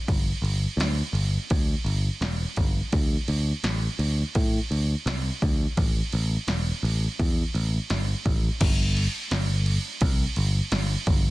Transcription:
0.08 G1, kick, crash
0.42 G1, crash
0.77 D2, snare, crash
1.13 G1, crash
1.50 D2, kick, crash
1.84 G1, crash
2.21 E1, snare, crash
2.56 G1, kick, crash
2.92 D2, kick, crash
3.28 D2, crash
3.64 A1, snare, crash
3.99 D2, crash
4.35 A2, kick, crash
4.71 D2, crash
5.06 C2, snare, crash
5.42 D2, kick, crash
5.77 A1, kick, crash
6.13 A1, crash
6.48 E1, snare, crash
6.83 A1, crash
7.19 E2, kick, crash
7.54 A1, crash
7.90 G1, snare, crash
8.25 A1, kick, crash
8.61 G1, kick, crash
8.97 crash
9.31 G1, snare, crash
9.66 crash
10.01 C2, kick, crash
10.36 G1, crash
10.72 G1, snare, crash
11.07 G1, kick, crash

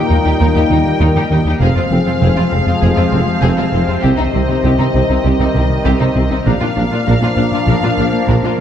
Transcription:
Already playing: A#2 G3 A#3 D#4 A#4 D#5 G5
0.09 D#2 D#4
0.25 D#2 D#4 G4
0.40 D#2 D#4 A#4
0.55 D#2 D#4 G4
0.70 D#2 D#3 D#4
0.85 D#3
1.00 D#2 D#4 A#4
1.15 D#2 D#3 D#4 G4
1.30 D#2 D#3 D#4
1.45 D#2 D#4 G4
1.60 F1 F2 C3 F3 G#3 C4 G#4 C5 F5
1.76 F2 C4 F4
1.91 F1 F2 F3 C4
2.06 F2 F3 C4 F4
2.21 F1 F2 C4 G#4
2.36 F2 F3 C4 F4
2.51 F1 F2 C4
2.66 F2 C4 F4
2.81 F1 F2 C4 G#4
2.97 F2 C4 F4
3.12 F1 F2 F3 C4
3.28 F3
3.42 F1 F2 C4 G#4
3.57 F2 F3 C4 F4
3.73 F1 F2 F3 C4
3.87 F2 C4 F4
4.02 C2 C3 D#3 G3 C4 G4 D#5
4.17 C2 C3 C4 D#4
4.33 C2 C3 C4
4.49 C3 C4 D#4
4.64 C2 C3 C4 G4
4.78 C3 C4 D#4
4.94 C2 C3 C4
5.09 C2 C3 C4 D#4
5.24 C2 C3 C4 G4
5.39 C2 C3 C4 D#4
5.54 C2 C3 C4
5.70 C3
5.85 C2 C3 C4 G4
6.00 C3 C4 D#4
6.15 C2 C3 C4
6.30 C2 C3 C4 D#4
6.45 A#1 A#2 F3 A#3 D4 A#4 D5 F5
6.60 A#2 D4 F4
6.76 A#1 A#2 A#3 D4
6.91 A#2 A#3 D4 F4
7.06 A#1 A#2 D4 A#4
7.21 A#2 A#3 D4 F4
7.36 A#1 A#2 D4
7.52 A#2 D4 F4
7.67 A#1 A#2 D4 A#4
7.82 A#2 D4 F4
7.97 A#1 A#2 A#3 D4
8.13 A#3
8.28 A#1 A#2 D4 A#4
8.43 A#2 A#3 D4 F4

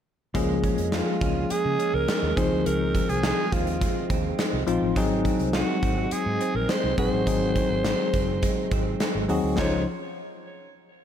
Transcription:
0.34 C#2 F3 G#3 A#3 C#4 G#4, kick, closed hi-hat
0.64 C#4, kick, closed hi-hat
0.78 F2, closed hi-hat
0.92 G#3 F4, snare, closed hi-hat
1.21 C#2 C#4, kick, closed hi-hat
1.50 G#3 G#4, muted fingered electric bass stroke, closed hi-hat
1.65 C#3
1.79 C#4, closed hi-hat
1.94 C#2 A#4
2.08 G#3, snare, closed hi-hat
2.23 D#2
2.36 C#2 D#3 F3 C4 D#4 G#4 C5, kick, closed hi-hat
2.52 D2
2.66 C#2 D#3 A#4, closed hi-hat
2.95 C4, kick, closed hi-hat
3.09 C2 G#4, closed hi-hat
3.23 G#3, snare, closed hi-hat
3.52 D#2 C4 F4, kick, closed hi-hat
3.67 closed hi-hat
3.81 G#3, kick, closed hi-hat
4.10 D#2 C4, kick, closed hi-hat
4.39 G#3, snare, closed hi-hat
4.53 C2
4.67 A#1 F3 C4 D#4 F4, closed hi-hat
4.82 A1
4.96 G#1 D#3 F#3 C4 D#4 G#4, kick, closed hi-hat
5.25 C4, kick, closed hi-hat
5.40 C2, closed hi-hat
5.53 G#3 F#4, snare, closed hi-hat
5.83 G#1 C4, kick, closed hi-hat
6.11 G#3 G#4, muted fingered electric bass stroke, closed hi-hat
6.26 G#2
6.41 C4, closed hi-hat
6.55 A#1 A#4
6.69 G#3 C5, snare, closed hi-hat
6.84 C2
6.98 A#1 F#3 C4 D#4 F#4 G#4 C5, kick, closed hi-hat
7.13 A1
7.27 G#1 D#3 F#3 C4 D#4 G#4, kick, closed hi-hat
7.56 C4, kick, closed hi-hat
7.71 G#1
7.85 G#3, snare, closed hi-hat
8.14 F#1 C4, kick, closed hi-hat
8.43 G#3, kick, closed hi-hat
8.71 G#1 C4, kick, closed hi-hat
9.00 G#3, snare, closed hi-hat
9.15 G#1
9.28 D#2 F#3 C4 D#4 F#4 G#4, open hi-hat
9.44 D2
9.58 C#2 D#3 F3 G#3 C4 C#4 D#4 F4 C5 C#5, kick, snare, crash

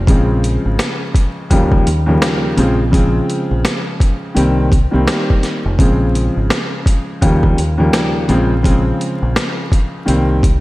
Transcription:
0.07 A#1 C#3 F3 G#3 C4, kick, closed hi-hat
0.44 closed hi-hat
0.65 G#1
0.79 snare, closed hi-hat
1.15 kick, closed hi-hat
1.50 D#2 C#3 F3 G3 A#3, kick, closed hi-hat
1.72 kick
1.87 D#2, closed hi-hat
2.06 D#2 C#3 F3 G3 A#3
2.22 snare, closed hi-hat
2.56 A#1 C#3 F3 G#3 C4, closed hi-hat
2.91 C#3 F3 G#3 C4, kick, closed hi-hat
3.30 closed hi-hat
3.51 A#1
3.65 snare, closed hi-hat
4.00 kick, closed hi-hat
4.34 C2 D#3 G3 A#3 C4, closed hi-hat
4.72 kick, closed hi-hat
4.91 C2 D#3 G3 A#3 C4
5.08 snare, closed hi-hat
5.30 kick
5.43 snare, closed hi-hat
5.65 F1
5.78 A#1 C#3 F3 G#3 C4, kick, closed hi-hat
6.15 closed hi-hat
6.37 G#1
6.50 snare, closed hi-hat
6.86 kick, closed hi-hat
7.21 D#2 C#3 F3 G3 A#3, kick, closed hi-hat
7.43 kick
7.58 D#2, closed hi-hat
7.78 D#2 C#3 F3 G3 A#3
7.93 snare, closed hi-hat
8.28 A#1 C#3 F3 G#3 C4, closed hi-hat
8.62 C#3 F3 G#3 C4, kick, closed hi-hat
9.01 closed hi-hat
9.22 A#1
9.36 snare, closed hi-hat
9.72 kick, closed hi-hat
10.05 C2 D#3 G3 A#3 C4, closed hi-hat
10.43 kick, closed hi-hat

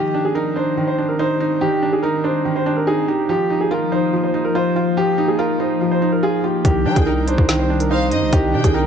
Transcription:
Already playing: D#3 C4 G4 D5
0.14 D4
0.25 G#4
0.35 D#4 A#4
0.56 D4 C5
0.77 D#3
0.87 C5
0.98 D4
1.08 A#4
1.19 D#4 C5
1.40 D#4
1.61 D#3 G4
1.82 D4
1.93 G#4
2.02 D#4 A#4
2.24 D4 C5
2.45 D#3
2.56 C5
2.66 D4
2.77 A#4
2.87 D#4 G#4
3.08 D#4 G4
3.29 F3 A#3 D#4 G4
3.50 D#4
3.61 G#4
3.71 F4 A#4
3.92 D#4 C5
4.13 F3
4.24 C5
4.34 D#4
4.45 A#4
4.55 F4 C5
4.76 F4
4.97 F3 G4
5.18 D#4
5.28 G#4
5.38 F4 A#4
5.59 D#4 C5
5.81 F3
5.91 C5
6.02 D#4
6.12 A#4
6.23 F4 G#4
6.44 F4 G4
6.65 C2 D#3 C4 G4 D5, kick, closed hi-hat
6.86 G3 D4 G5
6.96 C2 G#4, kick, closed hi-hat
7.06 D#4 A#4
7.27 D4 C5, closed hi-hat
7.38 C2, kick
7.49 D#3, snare, closed hi-hat
7.59 C5
7.70 D4
7.80 A#4, closed hi-hat
7.91 D#4 C5 F5
8.11 G2 D#4 D#5, closed hi-hat
8.22 C2
8.33 C2 D#3 G4, kick, closed hi-hat
8.54 C3 D4 G5
8.64 C2 G#4, kick, closed hi-hat
8.74 D#4 A#4

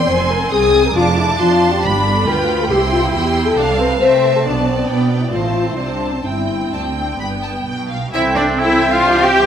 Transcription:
Already playing: C4 C6
0.07 F1 F2 C5 G#5
0.31 A#4
0.51 C2 G#4 G#5 D#6
0.86 A#4
0.95 F1 F2 D4 F4 A5 D6
1.18 E4
1.39 F2 F3 F4 C6
1.71 G4
1.83 G1 G2 D4 B5
2.06 A4
2.26 D2 F4 B4 G5 B5
2.60 A4
2.70 C2 C3 E4 G4 G5 C6
2.92 F4
3.13 E2 E3 G4 C6
3.46 A4
3.57 C2 C3 D4 F5 A5
3.78 C4 B4
4.00 C3 A3 C4 C5 E5 A5
4.34 A4
4.44 B1 B2 B3 D4 D5
4.68 C4
4.88 B2 B3 D4 G5
5.21 E4
5.31 A1 A2 C4 F4 C5 A5
5.66 E4
5.76 C2 C3 D4 A5
6.13 C4
6.24 G1 G2 C4 E4 G5
6.72 D2 D4 A5
6.97 G5
7.19 G1 G2 B3 G5 B5
7.43 A5
7.66 B1 B2 G5
7.90 F5
8.13 C2 E3 C4 E4 A4 E5 G5
8.36 D4 D5
8.59 E3 C4 E4 E5 G5
8.92 F4 F5
9.03 D4 G4
9.25 C4 G4 G5

